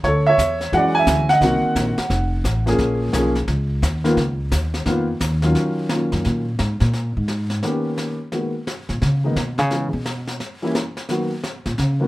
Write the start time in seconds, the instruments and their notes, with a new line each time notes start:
0.04 upright bass D2, grand piano A4 C#5, brush sweep, kick, snare
0.27 grand piano C#5 E5
0.38 upright bass E2, kick, snare, hi-hat pedal
0.61 snare
0.72 upright bass F#2, grand piano E3 G#3 C#4 F#4 F#5, brush sweep, kick, snare
0.77 grand piano D5
0.95 grand piano G#5
0.99 grand piano E5
1.06 upright bass D2, kick, snare, hi-hat pedal
1.29 grand piano D#5 F#5, snare
1.41 upright bass C2, grand piano D#3 A#3 C4 F#4, brush sweep, kick, snare
1.63 muted upright bass stroke
1.75 upright bass A#1, kick, snare, hi-hat pedal
1.98 muted upright bass stroke, snare
2.10 upright bass F1, brush sweep, kick, snare
2.44 upright bass A1, kick, snare, hi-hat pedal
2.66 grand piano F3 A#3 C#4 G#4, snare
2.78 upright bass A#1, brush sweep, kick, snare
3.13 upright bass B1, grand piano F3 A#3 C#4 G#4, kick, snare, hi-hat pedal
3.35 snare
3.48 upright bass C#2, brush sweep, kick, snare
3.82 upright bass D#2, kick, snare, hi-hat pedal
4.04 grand piano D#3 A#3 B3 F4, snare
4.17 upright bass C#2, brush sweep, kick, snare
4.52 upright bass D#2, kick, snare, hi-hat pedal
4.74 snare
4.86 upright bass F2, grand piano D#3 A#3 B3 F4, brush sweep, kick, snare
5.20 upright bass D#2, kick, snare, hi-hat pedal
5.42 grand piano D#3 F#3 C#4 F4, snare
5.55 brush sweep, snare
5.89 grand piano D#3 F#3 A#3 C#4 F4, snare
6.12 upright bass F#2, snare
6.25 upright bass A#2, brush sweep, snare
6.59 upright bass G#2, snare
6.80 upright bass A#2, snare
6.93 brush sweep, snare
7.17 upright bass G#2
7.28 snare
7.50 snare
7.63 grand piano D#3 A#3 B3 C#4 G4, brush sweep, snare
7.98 snare
8.32 grand piano D#3 G#3 A#3 B3 F#4, brush sweep, snare
8.67 snare
8.89 upright bass A#2, snare
9.02 upright bass C#3, brush sweep, snare
9.24 grand piano D#3 G#3 A#3 B3 D#4
9.36 upright bass B2, snare
9.58 upright bass C#3, snare
9.71 grand piano E3 G#3 B3 C#4 G#4, brush sweep, snare
9.93 upright bass B2
10.06 snare
10.27 snare
10.40 brush sweep, snare
10.62 grand piano E3 G3 A#3 C#4 E4
10.75 snare
10.97 snare
11.09 grand piano D#3 F#3 A#3 B3 F#4, brush sweep, snare
11.44 snare
11.66 upright bass A#2, snare
11.78 upright bass C#3, brush sweep, snare
12.00 grand piano D#3 F#3 A#3 B3 F#4